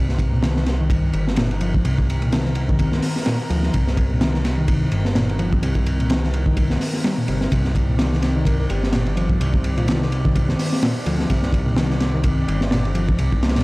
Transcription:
0.00 1.11 C2 medium
0.00 13.64 D#3 medium
0.00 13.64 C4 medium
0.00 7.50 A#4 medium
0.09 snare soft
0.19 kick medium
0.19 ride medium
0.33 0.43 A#2 medium
0.43 0.52 D#3 medium
0.43 snare loud
0.43 ride medium
0.56 0.61 D#3 medium
0.56 snare soft
0.66 snare soft
0.66 ride medium
0.80 1.26 D#3 loud
0.90 kick loud
0.90 ride medium
1.13 1.82 G1 loud
1.13 ride medium
1.27 snare soft
1.36 1.47 A#2 loud
1.36 snare loud
1.36 ride medium
1.51 ride soft
1.61 1.84 F3 medium
1.61 ride medium
1.74 kick medium
1.85 3.00 C2 medium
1.85 1.94 C3 medium
1.85 ride medium
1.98 kick medium
2.10 ride medium
2.22 2.32 A#2 medium
2.22 ride soft
2.32 2.41 D#3 medium
2.32 snare loud
2.32 ride medium
2.45 2.50 D#3 medium
2.45 snare soft
2.55 ride medium
2.69 3.15 D#3 loud
2.69 kick loud
2.79 kick loud
2.79 ride medium
2.92 snare soft
3.02 snare soft
3.02 open hi-hat medium
3.16 snare soft
3.26 3.36 A#2 loud
3.26 snare loud
3.26 ride medium
3.50 3.70 D2 medium
3.50 3.73 F3 medium
3.50 ride medium
3.63 snare soft
3.74 4.89 C2 medium
3.74 3.83 C3 medium
3.74 kick loud
3.74 ride medium
3.87 snare soft
3.97 kick medium
3.97 ride medium
4.11 4.21 A#2 medium
4.21 4.30 D#3 medium
4.21 snare loud
4.21 ride medium
4.34 4.39 D#3 medium
4.34 snare soft
4.45 snare medium
4.45 ride medium
4.58 5.04 D#3 medium
4.68 kick loud
4.68 ride medium
4.92 5.60 G1 medium
4.92 ride medium
5.05 snare soft
5.15 5.25 A#2 loud
5.15 snare loud
5.15 ride medium
5.29 ride soft
5.39 5.62 F3 medium
5.39 ride medium
5.53 kick loud
5.63 6.78 C2 medium
5.63 5.72 C3 medium
5.63 ride medium
5.75 kick loud
5.86 ride medium
6.00 6.09 A#2 medium
6.00 ride soft
6.10 6.19 D#3 medium
6.10 snare loud
6.10 ride medium
6.23 6.28 D#3 medium
6.23 snare soft
6.34 ride medium
6.46 6.93 D#3 loud
6.46 kick medium
6.57 kick loud
6.57 ride medium
6.70 snare soft
6.80 snare soft
6.80 open hi-hat medium
6.93 snare soft
7.04 7.14 G3 loud
7.04 snare loud
7.04 ride medium
7.18 7.25 A#2 medium
7.28 7.48 G1 medium
7.28 7.37 C3 medium
7.28 ride medium
7.41 snare soft
7.52 8.67 C2 medium
7.52 7.61 C3 medium
7.52 13.64 D5 medium
7.52 kick loud
7.52 ride medium
7.65 snare soft
7.75 kick medium
7.75 ride medium
7.89 7.98 A#2 medium
7.99 8.08 D#3 medium
7.99 snare loud
7.99 ride medium
8.12 8.17 D#3 medium
8.12 snare soft
8.22 snare medium
8.22 ride medium
8.36 8.82 D#3 loud
8.45 8.55 A#4 medium
8.45 kick loud
8.45 ride medium
8.60 8.66 A#4 medium
8.70 9.38 G1 loud
8.70 9.37 G4 medium
8.70 ride medium
8.83 snare soft
8.93 9.03 A#2 medium
8.93 snare loud
8.93 ride loud
9.06 ride soft
9.17 9.40 F3 medium
9.17 ride medium
9.29 kick medium
9.41 10.56 C2 loud
9.41 9.50 C3 medium
9.41 ride medium
9.54 kick medium
9.64 ride medium
9.77 9.87 A#2 medium
9.77 9.84 F4 medium
9.77 ride soft
9.88 9.97 D#3 medium
9.88 9.97 F4 medium
9.88 snare loud
9.88 ride medium
10.01 10.06 D#3 medium
10.01 snare soft
10.12 ride medium
10.25 10.71 D#3 loud
10.25 kick medium
10.36 kick loud
10.36 ride medium
10.49 snare soft
10.59 snare soft
10.59 open hi-hat medium
10.73 snare soft
10.82 10.92 A#2 loud
10.82 snare loud
10.82 ride loud
11.06 11.26 D2 medium
11.06 11.29 F3 medium
11.06 ride medium
11.19 snare soft
11.30 12.45 C2 medium
11.30 11.39 C3 medium
11.30 kick loud
11.30 ride medium
11.43 snare soft
11.53 kick loud
11.53 ride medium
11.67 11.76 A#2 medium
11.76 11.86 D#3 medium
11.76 snare loud
11.76 ride medium
11.90 11.95 D#3 medium
11.90 snare soft
12.00 snare medium
12.00 ride medium
12.14 12.60 D#3 loud
12.24 kick loud
12.24 ride medium
12.48 13.16 G1 loud
12.48 ride medium
12.61 snare soft
12.71 12.81 A#2 loud
12.71 snare loud
12.71 ride medium
12.85 ride soft
12.95 13.18 F3 medium
12.95 ride medium
13.09 kick loud
13.18 13.64 C2 medium
13.18 13.28 C3 medium
13.18 ride medium
13.32 kick medium
13.43 snare medium
13.43 ride medium
13.48 snare medium
13.48 ride medium
13.55 13.64 A#2 medium
13.55 snare medium
13.55 ride medium
13.60 snare medium
13.60 ride medium

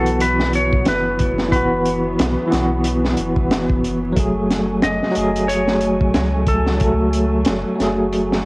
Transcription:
0.00 0.84 B1 loud
0.00 1.49 E3 medium
0.00 4.13 E3 medium
0.00 8.45 F#3 medium
0.00 1.52 B3 medium
0.00 4.12 B3 medium
0.00 1.56 F#4 loud
0.00 0.22 A4 medium
0.06 closed hi-hat soft
0.20 0.55 B4 loud
0.20 closed hi-hat medium
0.40 snare medium
0.53 0.85 C#5 loud
0.53 closed hi-hat medium
0.73 kick loud
0.85 2.16 F#1 loud
0.85 1.51 B4 medium
0.85 snare loud
0.85 closed hi-hat medium
1.19 kick medium
1.19 closed hi-hat medium
1.38 snare soft
1.49 2.46 E3 medium
1.49 2.48 B3 medium
1.49 3.79 B4 medium
1.49 kick loud
1.49 closed hi-hat medium
1.56 2.50 F#4 loud
1.85 closed hi-hat medium
2.19 2.36 B1 loud
2.19 snare loud
2.19 closed hi-hat loud
2.48 4.11 E3 loud
2.48 4.13 B3 medium
2.52 3.15 B1 loud
2.52 4.15 F#4 loud
2.52 snare medium
2.52 closed hi-hat medium
2.84 closed hi-hat medium
3.05 snare soft
3.17 3.81 F#1 medium
3.17 closed hi-hat medium
3.36 kick medium
3.51 snare loud
3.51 closed hi-hat medium
3.70 kick loud
3.84 4.80 F#1 loud
3.84 closed hi-hat medium
4.13 5.10 F#3 medium
4.13 8.45 A3 medium
4.13 5.12 A3 medium
4.13 8.45 G#5 medium
4.13 kick loud
4.13 closed hi-hat medium
4.20 5.14 G#4 loud
4.50 snare medium
4.50 closed hi-hat medium
4.82 5.00 F#1 medium
4.82 5.51 D#5 loud
4.82 snare loud
4.82 closed hi-hat medium
5.03 snare medium
5.11 6.75 F#3 medium
5.11 6.77 A3 medium
5.11 closed hi-hat medium
5.16 6.12 F#1 loud
5.16 6.79 G#4 loud
5.36 closed hi-hat soft
5.48 6.50 C#5 loud
5.48 closed hi-hat medium
5.68 snare soft
5.81 closed hi-hat medium
6.01 kick loud
6.14 7.44 C#2 medium
6.14 snare loud
6.14 closed hi-hat medium
6.47 7.43 A4 medium
6.47 kick medium
6.47 closed hi-hat medium
6.66 snare soft
6.77 7.74 F#3 medium
6.77 7.76 A3 medium
6.77 closed hi-hat medium
6.81 7.78 A4 loud
6.81 kick loud
7.13 closed hi-hat medium
7.45 7.64 F#1 loud
7.45 snare loud
7.45 closed hi-hat medium
7.75 8.45 F#3 medium
7.75 8.45 A3 medium
7.80 8.43 F#1 loud
7.80 8.45 G#4 loud
7.80 snare soft
7.80 closed hi-hat medium
8.13 closed hi-hat medium
8.33 snare medium

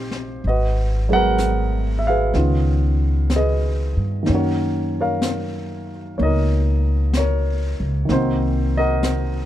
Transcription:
0.00 0.40 A#1 medium
0.00 0.41 C3 soft
0.00 0.43 A#3 soft
0.00 0.44 C4 soft
0.00 0.44 D#4 soft
0.00 0.46 G4 soft
0.00 0.46 C5 medium
0.00 0.46 D#5 medium
0.11 snare soft
0.42 2.31 G#1 medium
0.42 brush sweep soft
0.48 2.33 F#4 soft
0.48 1.14 B4 soft
0.48 1.07 D#5 medium
1.09 2.34 F#3 soft
1.09 2.35 G#3 soft
1.09 2.34 B3 soft
1.09 2.08 G#4 soft
1.13 2.34 A#4 medium
1.13 2.08 B4 medium
1.13 1.99 F#5 medium
1.38 brush sweep soft
1.38 snare soft
1.38 hi-hat pedal soft
1.99 2.06 E5 medium
2.07 3.35 G#4 medium
2.07 3.35 B4 medium
2.07 3.36 F5 medium
2.34 3.94 C#2 medium
2.34 4.21 D#3 soft
2.34 4.28 B3 soft
2.34 4.28 C#4 soft
2.34 4.28 F4 soft
2.34 brush sweep soft
2.34 snare soft
3.30 brush sweep soft
3.30 snare soft
3.30 hi-hat pedal soft
3.36 4.26 G#4 soft
3.36 4.26 B4 soft
3.36 4.33 D#5 medium
3.97 4.25 G2 soft
4.23 8.04 D#3 soft
4.23 6.17 A#3 soft
4.23 brush sweep soft
4.23 snare soft
4.29 6.15 F#2 medium
4.29 8.11 C#4 soft
4.34 8.12 F#4 soft
4.34 5.00 A#4 soft
4.34 4.99 C#5 medium
5.00 6.24 A#4 soft
5.00 6.16 C#5 soft
5.00 5.89 F5 medium
5.22 brush sweep soft
5.22 snare soft
5.22 hi-hat pedal soft
6.18 7.76 C#2 medium
6.18 8.07 A#3 soft
6.18 8.11 D#4 soft
6.18 6.20 C#5 soft
6.18 brush sweep soft
6.23 7.17 A#4 soft
6.23 7.12 D#5 medium
7.13 8.14 C#5 medium
7.13 brush sweep soft
7.13 snare soft
7.13 hi-hat pedal soft
7.19 8.08 A#4 soft
7.80 8.08 C#2 medium
8.05 9.46 C2 medium
8.05 9.46 D#3 soft
8.05 9.46 A#3 soft
8.05 brush sweep soft
8.05 snare soft
8.12 9.46 C4 soft
8.12 9.46 D#4 soft
8.12 8.78 F#4 soft
8.12 8.72 C5 medium
8.78 9.46 F#4 medium
8.78 9.46 A#4 medium
8.78 9.46 D#5 medium
9.03 brush sweep soft
9.03 snare soft
9.03 hi-hat pedal soft

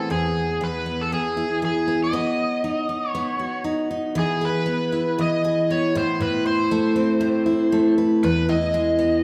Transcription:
0.00 0.11 A2 medium
0.00 0.15 E3 medium
0.00 0.86 B3 medium
0.00 0.15 C4 medium
0.00 0.10 E4 soft
0.00 0.11 A4 medium
0.10 1.11 E2 medium
0.10 2.13 G#4 medium
0.10 0.63 G#4 medium
0.61 1.61 E3 medium
0.61 1.01 B4 medium
0.86 1.87 B3 medium
1.01 1.13 A4 medium
1.12 2.19 E2 medium
1.12 1.64 G#4 medium
1.37 2.18 E4 medium
1.62 2.13 E3 medium
1.62 1.99 G#4 medium
1.88 2.13 B3 medium
2.04 3.10 D#5 medium
2.13 3.14 B3 medium
2.13 4.16 C#5 medium
2.64 2.88 D#4 medium
2.89 3.63 D#4 soft
3.10 3.63 C#5 medium
3.15 4.65 B3 medium
3.39 4.21 F#4 medium
3.64 3.89 D#4 medium
3.91 4.21 D#4 medium
4.15 5.18 E3 medium
4.15 4.44 G#4 medium
4.41 5.43 G#4 medium
4.41 5.21 B4 medium
4.66 5.70 B3 medium
4.92 6.46 E4 medium
5.18 5.95 E3 medium
5.18 5.72 D#5 medium
5.44 6.00 G#4 medium
5.70 6.23 B3 medium
5.70 5.96 C#5 loud
5.95 6.19 A2 medium
5.95 6.22 C5 medium
6.20 7.19 A2 medium
6.20 6.46 B4 medium
6.46 7.45 E4 medium
6.46 7.94 C5 medium
6.71 7.71 A3 medium
6.96 8.28 C4 medium
7.21 8.22 A2 medium
7.46 8.48 E4 medium
7.72 8.28 A3 medium
7.98 8.28 B4 medium
8.23 9.22 E2 medium
8.23 8.50 B4 medium
8.49 9.23 E4 medium
8.49 9.23 D#5 medium
8.74 9.23 G#3 medium
8.99 9.23 B3 medium

